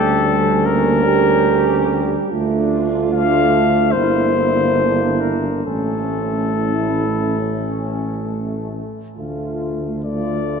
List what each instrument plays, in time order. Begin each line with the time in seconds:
Already playing: tuba D2, euphonium G3, french horn section A3, trombone section C#4, flugelhorn A4
0.25 french horn section G3
0.64 french horn section A#3, flugelhorn A#4
1.04 french horn section G4
2.30 tuba D2, euphonium A3, trombone section D4, french horn section F4
3.13 euphonium A3, trombone section D4, flugelhorn F5
3.92 tuba G1, euphonium A#3, french horn section E4, trombone section E4, flugelhorn C5
4.35 french horn section D4
4.77 trombone section D4, french horn section E4
5.21 flugelhorn A#4
5.64 tuba A1, euphonium A3, french horn section C#4, trombone section C#4, flugelhorn A4
6.52 trombone section E4
7.40 trombone section C#4
8.28 trombone section A3
9.17 tuba D2, euphonium A3, trombone section F4
10.05 euphonium A3, trombone section F4, flugelhorn D5